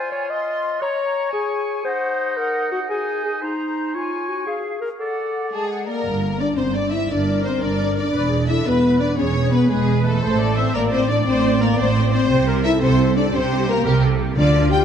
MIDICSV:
0, 0, Header, 1, 11, 480
1, 0, Start_track
1, 0, Tempo, 347423
1, 2570, Time_signature, 12, 3, 24, 8
1, 20513, End_track
2, 0, Start_track
2, 0, Title_t, "Flute section"
2, 0, Program_c, 0, 73
2, 0, Note_on_c, 0, 80, 53
2, 417, Note_off_c, 0, 80, 0
2, 417, Note_on_c, 0, 84, 53
2, 1119, Note_off_c, 0, 84, 0
2, 1123, Note_on_c, 0, 82, 51
2, 1839, Note_on_c, 0, 80, 49
2, 1847, Note_off_c, 0, 82, 0
2, 2559, Note_on_c, 0, 78, 52
2, 2564, Note_off_c, 0, 80, 0
2, 3250, Note_off_c, 0, 78, 0
2, 3267, Note_on_c, 0, 78, 56
2, 3987, Note_off_c, 0, 78, 0
2, 3996, Note_on_c, 0, 80, 51
2, 4719, Note_on_c, 0, 82, 46
2, 4725, Note_off_c, 0, 80, 0
2, 5444, Note_off_c, 0, 82, 0
2, 5449, Note_on_c, 0, 80, 51
2, 6159, Note_off_c, 0, 80, 0
2, 6159, Note_on_c, 0, 77, 49
2, 6560, Note_off_c, 0, 77, 0
2, 6888, Note_on_c, 0, 78, 45
2, 7562, Note_off_c, 0, 78, 0
2, 7613, Note_on_c, 0, 81, 62
2, 7847, Note_off_c, 0, 81, 0
2, 7868, Note_on_c, 0, 78, 55
2, 8098, Note_on_c, 0, 74, 43
2, 8109, Note_off_c, 0, 78, 0
2, 8345, Note_off_c, 0, 74, 0
2, 20513, End_track
3, 0, Start_track
3, 0, Title_t, "Oboe"
3, 0, Program_c, 1, 68
3, 0, Note_on_c, 1, 65, 62
3, 1123, Note_on_c, 1, 73, 64
3, 1144, Note_off_c, 1, 65, 0
3, 2560, Note_off_c, 1, 73, 0
3, 2569, Note_on_c, 1, 63, 61
3, 3984, Note_off_c, 1, 63, 0
3, 3999, Note_on_c, 1, 63, 55
3, 4722, Note_on_c, 1, 72, 48
3, 4743, Note_off_c, 1, 63, 0
3, 5444, Note_on_c, 1, 73, 61
3, 5465, Note_off_c, 1, 72, 0
3, 6508, Note_off_c, 1, 73, 0
3, 6910, Note_on_c, 1, 74, 53
3, 8066, Note_off_c, 1, 74, 0
3, 20513, End_track
4, 0, Start_track
4, 0, Title_t, "Violin section"
4, 0, Program_c, 2, 48
4, 7621, Note_on_c, 2, 68, 53
4, 8078, Note_off_c, 2, 68, 0
4, 8126, Note_on_c, 2, 70, 56
4, 8838, Note_on_c, 2, 74, 51
4, 8847, Note_off_c, 2, 70, 0
4, 8936, Note_off_c, 2, 74, 0
4, 9076, Note_on_c, 2, 72, 55
4, 9174, Note_off_c, 2, 72, 0
4, 9309, Note_on_c, 2, 74, 52
4, 9552, Note_off_c, 2, 74, 0
4, 9562, Note_on_c, 2, 76, 52
4, 9799, Note_off_c, 2, 76, 0
4, 9805, Note_on_c, 2, 74, 52
4, 10285, Note_off_c, 2, 74, 0
4, 10294, Note_on_c, 2, 72, 53
4, 10525, Note_on_c, 2, 74, 57
4, 10530, Note_off_c, 2, 72, 0
4, 10995, Note_off_c, 2, 74, 0
4, 11012, Note_on_c, 2, 74, 62
4, 11713, Note_on_c, 2, 76, 58
4, 11714, Note_off_c, 2, 74, 0
4, 11954, Note_off_c, 2, 76, 0
4, 11959, Note_on_c, 2, 71, 64
4, 12441, Note_off_c, 2, 71, 0
4, 12450, Note_on_c, 2, 74, 55
4, 12683, Note_off_c, 2, 74, 0
4, 12687, Note_on_c, 2, 73, 65
4, 13156, Note_off_c, 2, 73, 0
4, 13160, Note_on_c, 2, 71, 55
4, 13397, Note_off_c, 2, 71, 0
4, 13411, Note_on_c, 2, 68, 56
4, 13878, Note_off_c, 2, 68, 0
4, 13896, Note_on_c, 2, 69, 65
4, 14594, Note_off_c, 2, 69, 0
4, 14620, Note_on_c, 2, 72, 70
4, 14841, Note_on_c, 2, 70, 70
4, 14850, Note_off_c, 2, 72, 0
4, 14937, Note_off_c, 2, 70, 0
4, 15076, Note_on_c, 2, 72, 65
4, 15313, Note_off_c, 2, 72, 0
4, 15328, Note_on_c, 2, 74, 68
4, 15554, Note_on_c, 2, 72, 72
4, 15562, Note_off_c, 2, 74, 0
4, 16024, Note_off_c, 2, 72, 0
4, 16029, Note_on_c, 2, 70, 69
4, 16261, Note_on_c, 2, 72, 69
4, 16272, Note_off_c, 2, 70, 0
4, 16709, Note_off_c, 2, 72, 0
4, 16726, Note_on_c, 2, 72, 72
4, 17441, Note_off_c, 2, 72, 0
4, 17457, Note_on_c, 2, 76, 76
4, 17555, Note_off_c, 2, 76, 0
4, 17708, Note_on_c, 2, 72, 77
4, 18176, Note_off_c, 2, 72, 0
4, 18183, Note_on_c, 2, 74, 70
4, 18279, Note_off_c, 2, 74, 0
4, 18424, Note_on_c, 2, 72, 77
4, 18893, Note_off_c, 2, 72, 0
4, 18913, Note_on_c, 2, 70, 80
4, 19141, Note_on_c, 2, 67, 68
4, 19148, Note_off_c, 2, 70, 0
4, 19376, Note_off_c, 2, 67, 0
4, 19864, Note_on_c, 2, 74, 78
4, 20306, Note_off_c, 2, 74, 0
4, 20341, Note_on_c, 2, 79, 80
4, 20436, Note_off_c, 2, 79, 0
4, 20513, End_track
5, 0, Start_track
5, 0, Title_t, "Violin section"
5, 0, Program_c, 3, 48
5, 7638, Note_on_c, 3, 68, 54
5, 8087, Note_off_c, 3, 68, 0
5, 8116, Note_on_c, 3, 70, 54
5, 8827, Note_off_c, 3, 70, 0
5, 8848, Note_on_c, 3, 74, 54
5, 9087, Note_off_c, 3, 74, 0
5, 9089, Note_on_c, 3, 72, 51
5, 9323, Note_off_c, 3, 72, 0
5, 9325, Note_on_c, 3, 74, 54
5, 9559, Note_on_c, 3, 76, 58
5, 9565, Note_off_c, 3, 74, 0
5, 9802, Note_off_c, 3, 76, 0
5, 9804, Note_on_c, 3, 74, 56
5, 10275, Note_off_c, 3, 74, 0
5, 10285, Note_on_c, 3, 72, 51
5, 10521, Note_off_c, 3, 72, 0
5, 10533, Note_on_c, 3, 74, 61
5, 10995, Note_off_c, 3, 74, 0
5, 11012, Note_on_c, 3, 74, 62
5, 11714, Note_off_c, 3, 74, 0
5, 11717, Note_on_c, 3, 76, 60
5, 11961, Note_off_c, 3, 76, 0
5, 11966, Note_on_c, 3, 71, 57
5, 12424, Note_on_c, 3, 74, 60
5, 12435, Note_off_c, 3, 71, 0
5, 12525, Note_off_c, 3, 74, 0
5, 12676, Note_on_c, 3, 73, 60
5, 13150, Note_off_c, 3, 73, 0
5, 13161, Note_on_c, 3, 71, 60
5, 13402, Note_off_c, 3, 71, 0
5, 13403, Note_on_c, 3, 68, 65
5, 13884, Note_off_c, 3, 68, 0
5, 13886, Note_on_c, 3, 69, 68
5, 14589, Note_off_c, 3, 69, 0
5, 14605, Note_on_c, 3, 72, 66
5, 14843, Note_off_c, 3, 72, 0
5, 14848, Note_on_c, 3, 70, 64
5, 15078, Note_on_c, 3, 72, 65
5, 15084, Note_off_c, 3, 70, 0
5, 15314, Note_off_c, 3, 72, 0
5, 15332, Note_on_c, 3, 74, 72
5, 15425, Note_off_c, 3, 74, 0
5, 15570, Note_on_c, 3, 72, 70
5, 16032, Note_off_c, 3, 72, 0
5, 16039, Note_on_c, 3, 70, 66
5, 16134, Note_off_c, 3, 70, 0
5, 16279, Note_on_c, 3, 72, 74
5, 16731, Note_off_c, 3, 72, 0
5, 16748, Note_on_c, 3, 72, 74
5, 17452, Note_off_c, 3, 72, 0
5, 17477, Note_on_c, 3, 76, 76
5, 17707, Note_off_c, 3, 76, 0
5, 17711, Note_on_c, 3, 72, 71
5, 18177, Note_off_c, 3, 72, 0
5, 18197, Note_on_c, 3, 74, 77
5, 18425, Note_off_c, 3, 74, 0
5, 18428, Note_on_c, 3, 72, 77
5, 18905, Note_off_c, 3, 72, 0
5, 18922, Note_on_c, 3, 70, 80
5, 19151, Note_on_c, 3, 67, 74
5, 19152, Note_off_c, 3, 70, 0
5, 19386, Note_off_c, 3, 67, 0
5, 19858, Note_on_c, 3, 74, 84
5, 20302, Note_off_c, 3, 74, 0
5, 20331, Note_on_c, 3, 79, 74
5, 20513, Note_off_c, 3, 79, 0
5, 20513, End_track
6, 0, Start_track
6, 0, Title_t, "Viola section"
6, 0, Program_c, 4, 48
6, 9793, Note_on_c, 4, 70, 49
6, 11184, Note_off_c, 4, 70, 0
6, 11245, Note_on_c, 4, 71, 62
6, 11477, Note_on_c, 4, 68, 47
6, 11480, Note_off_c, 4, 71, 0
6, 11716, Note_off_c, 4, 68, 0
6, 11728, Note_on_c, 4, 69, 51
6, 11963, Note_on_c, 4, 71, 56
6, 11966, Note_off_c, 4, 69, 0
6, 12684, Note_off_c, 4, 71, 0
6, 12684, Note_on_c, 4, 68, 53
6, 13390, Note_off_c, 4, 68, 0
6, 13407, Note_on_c, 4, 71, 62
6, 14111, Note_off_c, 4, 71, 0
6, 14116, Note_on_c, 4, 72, 67
6, 14355, Note_off_c, 4, 72, 0
6, 14366, Note_on_c, 4, 74, 65
6, 14603, Note_on_c, 4, 76, 60
6, 14604, Note_off_c, 4, 74, 0
6, 14841, Note_on_c, 4, 74, 75
6, 14842, Note_off_c, 4, 76, 0
6, 16991, Note_off_c, 4, 74, 0
6, 16991, Note_on_c, 4, 72, 81
6, 17225, Note_off_c, 4, 72, 0
6, 17225, Note_on_c, 4, 70, 71
6, 17460, Note_on_c, 4, 69, 73
6, 17467, Note_off_c, 4, 70, 0
6, 18415, Note_on_c, 4, 67, 71
6, 18420, Note_off_c, 4, 69, 0
6, 19123, Note_off_c, 4, 67, 0
6, 19135, Note_on_c, 4, 70, 83
6, 19369, Note_on_c, 4, 69, 65
6, 19378, Note_off_c, 4, 70, 0
6, 19615, Note_off_c, 4, 69, 0
6, 19619, Note_on_c, 4, 67, 71
6, 19858, Note_on_c, 4, 65, 84
6, 19859, Note_off_c, 4, 67, 0
6, 20513, Note_off_c, 4, 65, 0
6, 20513, End_track
7, 0, Start_track
7, 0, Title_t, "Clarinet"
7, 0, Program_c, 5, 71
7, 0, Note_on_c, 5, 72, 71
7, 156, Note_off_c, 5, 72, 0
7, 165, Note_on_c, 5, 73, 69
7, 415, Note_on_c, 5, 75, 81
7, 435, Note_off_c, 5, 73, 0
7, 1120, Note_off_c, 5, 75, 0
7, 1128, Note_on_c, 5, 73, 83
7, 1829, Note_off_c, 5, 73, 0
7, 1838, Note_on_c, 5, 68, 78
7, 2545, Note_off_c, 5, 68, 0
7, 2554, Note_on_c, 5, 72, 80
7, 3277, Note_on_c, 5, 70, 68
7, 3298, Note_off_c, 5, 72, 0
7, 3750, Note_off_c, 5, 70, 0
7, 3758, Note_on_c, 5, 66, 74
7, 3870, Note_off_c, 5, 66, 0
7, 4006, Note_on_c, 5, 68, 78
7, 4481, Note_off_c, 5, 68, 0
7, 4487, Note_on_c, 5, 68, 65
7, 4597, Note_off_c, 5, 68, 0
7, 4732, Note_on_c, 5, 63, 67
7, 5458, Note_on_c, 5, 65, 67
7, 5479, Note_off_c, 5, 63, 0
7, 5926, Note_on_c, 5, 66, 61
7, 5947, Note_off_c, 5, 65, 0
7, 6164, Note_off_c, 5, 66, 0
7, 6172, Note_on_c, 5, 68, 68
7, 6643, Note_off_c, 5, 68, 0
7, 6651, Note_on_c, 5, 70, 69
7, 6762, Note_off_c, 5, 70, 0
7, 6904, Note_on_c, 5, 69, 67
7, 7617, Note_off_c, 5, 69, 0
7, 20513, End_track
8, 0, Start_track
8, 0, Title_t, "French horn section"
8, 0, Program_c, 6, 60
8, 7622, Note_on_c, 6, 56, 57
8, 8078, Note_off_c, 6, 56, 0
8, 8112, Note_on_c, 6, 58, 59
8, 8838, Note_on_c, 6, 62, 58
8, 8840, Note_off_c, 6, 58, 0
8, 9068, Note_on_c, 6, 60, 63
8, 9082, Note_off_c, 6, 62, 0
8, 9317, Note_off_c, 6, 60, 0
8, 9329, Note_on_c, 6, 62, 62
8, 9560, Note_on_c, 6, 64, 63
8, 9567, Note_off_c, 6, 62, 0
8, 9803, Note_off_c, 6, 64, 0
8, 9807, Note_on_c, 6, 62, 64
8, 10277, Note_off_c, 6, 62, 0
8, 10295, Note_on_c, 6, 60, 70
8, 10522, Note_on_c, 6, 62, 66
8, 10526, Note_off_c, 6, 60, 0
8, 10995, Note_off_c, 6, 62, 0
8, 11011, Note_on_c, 6, 62, 70
8, 11714, Note_off_c, 6, 62, 0
8, 11728, Note_on_c, 6, 64, 66
8, 11963, Note_on_c, 6, 59, 70
8, 11966, Note_off_c, 6, 64, 0
8, 12436, Note_on_c, 6, 62, 67
8, 12443, Note_off_c, 6, 59, 0
8, 12680, Note_off_c, 6, 62, 0
8, 12682, Note_on_c, 6, 61, 71
8, 13143, Note_on_c, 6, 59, 76
8, 13154, Note_off_c, 6, 61, 0
8, 13391, Note_on_c, 6, 56, 71
8, 13394, Note_off_c, 6, 59, 0
8, 13877, Note_on_c, 6, 57, 77
8, 13878, Note_off_c, 6, 56, 0
8, 14599, Note_off_c, 6, 57, 0
8, 14601, Note_on_c, 6, 60, 78
8, 14836, Note_off_c, 6, 60, 0
8, 14840, Note_on_c, 6, 58, 86
8, 15080, Note_off_c, 6, 58, 0
8, 15089, Note_on_c, 6, 60, 78
8, 15320, Note_off_c, 6, 60, 0
8, 15323, Note_on_c, 6, 62, 78
8, 15555, Note_off_c, 6, 62, 0
8, 15566, Note_on_c, 6, 60, 79
8, 16039, Note_off_c, 6, 60, 0
8, 16046, Note_on_c, 6, 58, 88
8, 16273, Note_on_c, 6, 60, 79
8, 16280, Note_off_c, 6, 58, 0
8, 16738, Note_off_c, 6, 60, 0
8, 16754, Note_on_c, 6, 60, 89
8, 17251, Note_off_c, 6, 60, 0
8, 17461, Note_on_c, 6, 64, 93
8, 17694, Note_on_c, 6, 60, 95
8, 17699, Note_off_c, 6, 64, 0
8, 18167, Note_on_c, 6, 62, 92
8, 18169, Note_off_c, 6, 60, 0
8, 18410, Note_off_c, 6, 62, 0
8, 18417, Note_on_c, 6, 60, 93
8, 18893, Note_on_c, 6, 58, 98
8, 18900, Note_off_c, 6, 60, 0
8, 19132, Note_off_c, 6, 58, 0
8, 19137, Note_on_c, 6, 55, 82
8, 19246, Note_off_c, 6, 55, 0
8, 19844, Note_on_c, 6, 62, 93
8, 20295, Note_off_c, 6, 62, 0
8, 20306, Note_on_c, 6, 67, 91
8, 20513, Note_off_c, 6, 67, 0
8, 20513, End_track
9, 0, Start_track
9, 0, Title_t, "Timpani"
9, 0, Program_c, 7, 47
9, 19853, Note_on_c, 7, 50, 73
9, 20513, Note_off_c, 7, 50, 0
9, 20513, End_track
10, 0, Start_track
10, 0, Title_t, "Cello section"
10, 0, Program_c, 8, 48
10, 8364, Note_on_c, 8, 43, 53
10, 9001, Note_off_c, 8, 43, 0
10, 9085, Note_on_c, 8, 43, 45
10, 9721, Note_off_c, 8, 43, 0
10, 9809, Note_on_c, 8, 43, 49
10, 10443, Note_off_c, 8, 43, 0
10, 10530, Note_on_c, 8, 43, 48
10, 11163, Note_off_c, 8, 43, 0
10, 11246, Note_on_c, 8, 40, 57
10, 11880, Note_off_c, 8, 40, 0
10, 11972, Note_on_c, 8, 40, 56
10, 12603, Note_off_c, 8, 40, 0
10, 12691, Note_on_c, 8, 40, 54
10, 13323, Note_off_c, 8, 40, 0
10, 13417, Note_on_c, 8, 40, 61
10, 14046, Note_off_c, 8, 40, 0
10, 14133, Note_on_c, 8, 45, 63
10, 14762, Note_off_c, 8, 45, 0
10, 14856, Note_on_c, 8, 45, 61
10, 15482, Note_off_c, 8, 45, 0
10, 15565, Note_on_c, 8, 45, 65
10, 16194, Note_off_c, 8, 45, 0
10, 16284, Note_on_c, 8, 45, 70
10, 16912, Note_off_c, 8, 45, 0
10, 17004, Note_on_c, 8, 48, 82
10, 17630, Note_off_c, 8, 48, 0
10, 17714, Note_on_c, 8, 48, 70
10, 18343, Note_off_c, 8, 48, 0
10, 18429, Note_on_c, 8, 48, 74
10, 19060, Note_off_c, 8, 48, 0
10, 19143, Note_on_c, 8, 48, 78
10, 19776, Note_off_c, 8, 48, 0
10, 19861, Note_on_c, 8, 50, 80
10, 20492, Note_off_c, 8, 50, 0
10, 20513, End_track
11, 0, Start_track
11, 0, Title_t, "Double bass section"
11, 0, Program_c, 10, 48
11, 8356, Note_on_c, 10, 31, 54
11, 8997, Note_off_c, 10, 31, 0
11, 9088, Note_on_c, 10, 31, 54
11, 9722, Note_off_c, 10, 31, 0
11, 9812, Note_on_c, 10, 31, 53
11, 10444, Note_off_c, 10, 31, 0
11, 10531, Note_on_c, 10, 31, 49
11, 11163, Note_off_c, 10, 31, 0
11, 11244, Note_on_c, 10, 28, 57
11, 11879, Note_off_c, 10, 28, 0
11, 11968, Note_on_c, 10, 28, 58
11, 12601, Note_off_c, 10, 28, 0
11, 12692, Note_on_c, 10, 28, 61
11, 13323, Note_off_c, 10, 28, 0
11, 13406, Note_on_c, 10, 28, 61
11, 14040, Note_off_c, 10, 28, 0
11, 14129, Note_on_c, 10, 33, 70
11, 14760, Note_off_c, 10, 33, 0
11, 14844, Note_on_c, 10, 33, 67
11, 15475, Note_off_c, 10, 33, 0
11, 15563, Note_on_c, 10, 33, 69
11, 16193, Note_off_c, 10, 33, 0
11, 16272, Note_on_c, 10, 33, 75
11, 16906, Note_off_c, 10, 33, 0
11, 16987, Note_on_c, 10, 36, 75
11, 17621, Note_off_c, 10, 36, 0
11, 17707, Note_on_c, 10, 36, 73
11, 18339, Note_off_c, 10, 36, 0
11, 18424, Note_on_c, 10, 36, 81
11, 19058, Note_off_c, 10, 36, 0
11, 19130, Note_on_c, 10, 36, 80
11, 19769, Note_off_c, 10, 36, 0
11, 19853, Note_on_c, 10, 38, 80
11, 20488, Note_off_c, 10, 38, 0
11, 20513, End_track
0, 0, End_of_file